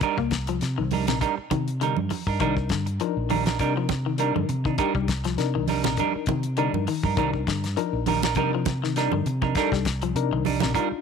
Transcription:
0.01 G3 D4 D#4 A#4, kick, closed hi-hat
0.17 C2 A#3, muted clean electric guitar stroke, kick
0.31 muted clean electric guitar stroke, kick, snare, closed hi-hat
0.47 F3, muted clean electric guitar stroke, closed hi-hat
0.61 C3, muted clean electric guitar stroke, snare, closed hi-hat
0.78 C2 D#3
0.91 G3 D4 D#4 A#4, open hi-hat, high conga
1.07 A#1 C3 D4 D#4 A#4, snare, closed hi-hat, high conga
1.21 G3 D4 D#4 A#4, kick, closed hi-hat
1.37 muted clean electric guitar stroke, muted fingered electric bass stroke
1.51 C3 D#3, muted clean electric guitar stroke, kick, closed hi-hat, high conga
1.68 closed hi-hat
1.81 D3 G3 D#4 A#4, closed hi-hat
1.96 G2, muted clean electric guitar stroke, high conga
2.10 muted clean electric guitar stroke, open hi-hat, high conga
2.27 G2 D4 D#4 A#4, kick
2.40 C2 D#3 G3 D4 D#4 A#4, kick, closed hi-hat
2.57 muted clean electric guitar stroke, kick
2.69 G2 D3, muted clean electric guitar stroke, kick, snare, closed hi-hat
2.86 muted clean electric guitar stroke, closed hi-hat
3.00 F3 D4 D#4 A#4, muted clean electric guitar stroke, closed hi-hat
3.17 A#1
3.30 D#3 G3 D4 D#4 A#4, open hi-hat, high conga
3.46 D4 D#4 A#4, snare, closed hi-hat, high conga
3.59 C3 G3 D4 D#4 A#4, kick, closed hi-hat
3.76 F3, muted clean electric guitar stroke
3.89 muted clean electric guitar stroke, kick, snare, closed hi-hat, high conga
4.06 D#3
4.18 G3 D4 D#4 A#4, closed hi-hat
4.36 G2 D3, muted clean electric guitar stroke, high conga
4.49 C3, muted clean electric guitar stroke, closed hi-hat
4.65 D#3 D4 D#4, kick
4.78 G3 D4 D#4 G4 A#4, kick, closed hi-hat
4.95 C2 G3, muted clean electric guitar stroke, kick
5.08 muted clean electric guitar stroke, kick, snare, closed hi-hat
5.24 F3, muted clean electric guitar stroke, snare, closed hi-hat
5.38 C3 D4 D#4 A#4, muted clean electric guitar stroke, snare, closed hi-hat
5.55 C2 D#3
5.68 G3 D4 D#4 A#4, open hi-hat, high conga
5.84 A#1 C3 D4 D#4 A#4, snare, closed hi-hat, high conga
5.97 G3 D4 D#4 A#4, kick, closed hi-hat, high conga
6.15 muted fingered electric bass stroke, muted clean electric guitar stroke
6.26 C3 D#3, muted clean electric guitar stroke, kick, closed hi-hat, high conga
6.43 closed hi-hat
6.57 D3 G3 D4 D#4 A#4, closed hi-hat
6.73 G2, muted clean electric guitar stroke, high conga
6.87 D#3, muted clean electric guitar stroke, open hi-hat
7.03 G2 D4 D#4 A#4, kick, high conga
7.17 C2 D#3 G3 D4 D#4 A#4, kick, closed hi-hat
7.33 muted clean electric guitar stroke, kick
7.47 G2 D3, muted clean electric guitar stroke, kick, snare, closed hi-hat
7.64 muted clean electric guitar stroke, snare, closed hi-hat
7.77 F3 D4 D#4 A#4, muted clean electric guitar stroke, closed hi-hat
7.93 A#1
8.06 D#3 G3 D4 D#4 A#4, open hi-hat, high conga
8.22 D4 D#4 A#4, snare, closed hi-hat, high conga
8.35 C3 G3 D4 D#4 A#4, kick, closed hi-hat, high conga
8.54 F3, muted clean electric guitar stroke
8.65 muted clean electric guitar stroke, kick, snare, closed hi-hat, high conga
8.84 D#3, snare
8.96 G3 D4 D#4 A#4, snare, closed hi-hat
9.12 G2 D3, muted clean electric guitar stroke, high conga
9.26 C3, muted clean electric guitar stroke, closed hi-hat
9.42 D4 D#4 A#4, muted clean electric guitar stroke, kick, high conga
9.55 G3 D4 D#4 A4 A#4, kick, snare, closed hi-hat
9.72 C2 G3, muted clean electric guitar stroke, kick, snare
9.85 muted clean electric guitar stroke, kick, snare, closed hi-hat
10.02 F3, muted clean electric guitar stroke, closed hi-hat
10.15 C3 D4 D#4 A#4, muted clean electric guitar stroke, closed hi-hat
10.31 C2 D#3
10.45 G3 D4 D#4, open hi-hat, high conga
10.60 A#1 C3 D4 D#4 A#4, snare, closed hi-hat, high conga
10.74 G3 D4 D#4 F4 A#4, kick, closed hi-hat
10.91 muted clean electric guitar stroke, muted fingered electric bass stroke

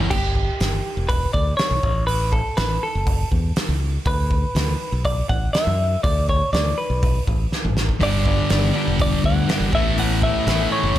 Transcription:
Already playing: A3
0.10 G1 G4, kick, crash
0.35 kick
0.60 G1, snare, open hi-hat
0.97 E1
1.09 B4, kick, open hi-hat
1.33 D2 D5, kick
1.57 C#5, snare, open hi-hat
1.71 B1
1.83 A1, kick
2.07 B4, open hi-hat
2.32 A4, kick
2.57 A1 B4, snare, open hi-hat
2.83 A4
2.95 F#1
3.07 kick, open hi-hat
3.32 E2, kick
3.56 snare, open hi-hat
3.69 C#2
4.06 D2 B4, kick, open hi-hat
4.31 kick
4.55 D2, snare, open hi-hat
4.92 B1
5.05 D5, kick, open hi-hat
5.29 A1 F#5, kick
5.53 E5, snare, open hi-hat
5.67 F#2
6.03 D2 D5, kick, open hi-hat
6.29 C#5, kick
6.53 D2 D5, snare, open hi-hat
6.78 B4
6.90 B1
7.03 kick, open hi-hat
7.27 A1, kick
7.52 snare
7.65 A1, mid tom
7.77 snare
7.89 kick
8.01 G1 G2 D3 G3 B3 D4 G4 D5, kick, open hi-hat
8.25 G3 B3 D4 G4, kick
8.50 G1 G3 B3 D4 G4, snare, open hi-hat
8.74 G2 D3 G3 B3 D4 G4
8.88 E1
9.00 D5, kick, open hi-hat
9.24 D2 F#5, kick
9.48 G2 D3 G3 B3 D4 G4, snare, open hi-hat
9.60 G1
9.73 A1 A2 E3 A3 B3 C#4 E4 E5, kick
9.97 A2 E3 B3 C#4 E4 F#5, open hi-hat
10.22 B3 C#4 E4 E5, kick
10.45 A1 A2 E3 A3 B3 C#4 E4, snare, open hi-hat
10.70 B3 C#4 E4 C#5
10.83 F#1
10.96 open hi-hat

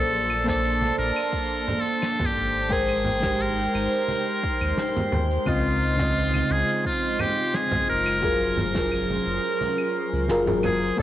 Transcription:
Already playing: A#1 A#3 D4 A4 C5 D5 A5 C6
0.13 open hi-hat
0.30 cabasa, claves
0.44 A#3 A5, kick, snare, high conga, cabasa
0.48 A4 C5 D5
0.64 open hi-hat
0.82 high conga
0.98 A#1 A#4, cabasa
1.16 open hi-hat, cabasa, claves
1.33 kick, open hi-hat
1.51 open hi-hat
1.68 low conga, cabasa
1.81 A4
1.86 cabasa
2.02 snare, open hi-hat, cabasa, claves
2.20 kick, low conga
2.26 G4
2.36 G#1, cabasa
2.54 cabasa
2.69 G#3 D#4 G#4 A#4 C5 G5, kick, open hi-hat, cabasa
2.89 open hi-hat, claves
3.05 low conga, cabasa
3.20 G#3 G4, kick, snare, high conga
3.25 A#4 C5
3.41 A#4, open hi-hat, cabasa
3.58 open hi-hat
3.74 G#1, cabasa, claves
3.92 open hi-hat, cabasa
4.08 open hi-hat, high conga, cabasa
4.43 kick, cabasa
4.61 D#2, open hi-hat, cabasa, claves
4.77 snare, open hi-hat, cabasa
4.96 open hi-hat, low conga
5.12 D#2, low conga, cabasa
5.30 open hi-hat, cabasa
5.45 C#2 C#3 C4 D#4 F4 D#5, kick, open hi-hat, cabasa, claves
5.65 open hi-hat
5.81 cabasa
5.96 C#3 C4, kick, snare, high conga, cabasa
6.00 F4 D#5
6.16 open hi-hat, cabasa
6.34 high conga, claves
6.50 C#2 G#4, cabasa
6.68 open hi-hat, cabasa
6.84 F4, kick, open hi-hat, cabasa
7.19 G4, low conga, cabasa, claves
7.37 cabasa
7.54 G#4, snare, open hi-hat, cabasa
7.71 kick, low conga
7.88 F#1 A#4, cabasa
8.06 cabasa, claves
8.21 F#3 C#4 F4 G#4 A#4, kick, open hi-hat, cabasa
8.40 open hi-hat
8.58 low conga, cabasa
8.72 F#3 F4, kick, snare, open hi-hat, high conga
8.76 G#4 A#4
8.91 open hi-hat, cabasa, claves
9.09 open hi-hat, high conga
9.26 F#1, cabasa
9.44 open hi-hat, cabasa
9.60 open hi-hat, high conga, cabasa
9.78 open hi-hat, claves
9.96 cabasa
10.13 C#2, open hi-hat, cabasa
10.28 F#1 F#3 F4 G#4 A#4, snare, open hi-hat, cabasa
10.46 F#3 F4 G#4 A#4, open hi-hat, low conga
10.63 G#4, low conga, cabasa, claves
10.82 open hi-hat, cabasa
10.97 A#1 D3 A#3 A4 C5 C6, kick, open hi-hat, high bongo, cabasa

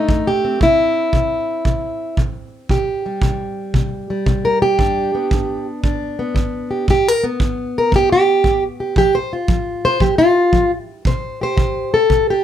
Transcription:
Already playing: A3 D#4
0.09 F#2, kick
0.27 G4
0.45 C4
0.61 C3 E4, kick
1.13 C3, kick
1.65 C3, kick
2.17 C3, kick
2.69 C3 G4, kick
3.06 G3
3.22 C3, kick
3.74 C3, kick
4.10 G3
4.26 C3, kick
4.45 A#4
4.62 G4
4.79 G2 D4, kick
5.15 B3
5.31 G2, kick
5.83 G2 D4, kick
6.19 B3
6.34 G2, kick
6.71 G4
6.88 G2 G4, kick
7.08 A#4
7.24 B3
7.40 G2, kick
7.78 A#4
7.92 G2, kick
7.96 G4
8.12 G4
8.44 G2, kick
8.80 G4
8.96 F3 G4, kick
9.15 C5
9.33 F4
9.48 F3, kick
9.85 C5
10.00 F3 G4, kick
10.18 F4
10.53 F3, kick
11.05 C3 C5, kick
11.41 G4 C5
11.57 C3, kick
11.94 A4
12.10 C3, kick
12.30 G4

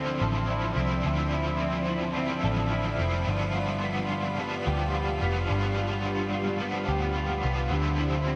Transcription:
Already playing: D2 D3 F3 C4 E4 A4 D5 E5 C6
0.21 A1 A4
0.50 E4
0.76 C2 C4 E4
0.82 F3
1.03 D2 D3 F3 B5
1.09 C4 E4
1.33 E4
1.61 C4
1.89 E4
2.16 D3 F3 C4
2.21 E4
2.44 A1 A4
2.72 E4
2.99 F1 C4 E4
3.04 F3
3.27 G1 G2 D3 F3 G4 F5
3.32 B3 F4
3.56 F4
3.84 B3
4.11 F4
4.39 D3 F3 B3
4.43 F4
4.66 D2 G4
4.95 F4
5.21 F1 B3 F4
5.26 F3
5.48 G1 G2 D3
5.52 F3 B3 F4
5.78 F4
6.06 B3
6.34 F4
6.60 D3 F3 B3
6.64 F4
6.88 D2 G4
7.16 F4
7.43 C2 B3 F4
7.47 F3
7.70 D2 D3 F3 D5 E5 C6
7.75 C4 E4
7.99 E4
8.27 C4

